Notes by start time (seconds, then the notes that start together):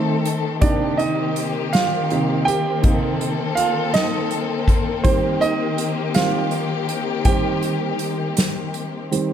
Already playing: D#3 A3 C4 D#4 A4
0.25 closed hi-hat
0.61 C3 A#3 C4 D4 D#4 G4 D5, kick, closed hi-hat
0.97 D#4 D#5, closed hi-hat
1.36 closed hi-hat
1.73 F4 F5, snare, closed hi-hat
2.10 C3 A#3 D#4, closed hi-hat
2.45 G4 G5, closed hi-hat
2.83 C3 A#3 D#4 A4, kick, closed hi-hat
3.21 closed hi-hat
3.55 F4 F5, closed hi-hat
3.94 D#4 D#5, snare, closed hi-hat
4.31 closed hi-hat
4.68 kick, closed hi-hat
5.04 D#3 G3 C4 G4 C5, kick, closed hi-hat
5.41 D#4 D#5, closed hi-hat
5.78 closed hi-hat
6.14 D#3 G3 C4 F4 F5, snare, closed hi-hat
6.51 closed hi-hat
6.89 closed hi-hat
7.25 D#3 G3 C4 G4 G5, kick, closed hi-hat
7.63 closed hi-hat
7.99 closed hi-hat
8.37 snare, closed hi-hat
8.74 closed hi-hat
9.11 D#3 G3 C4, closed hi-hat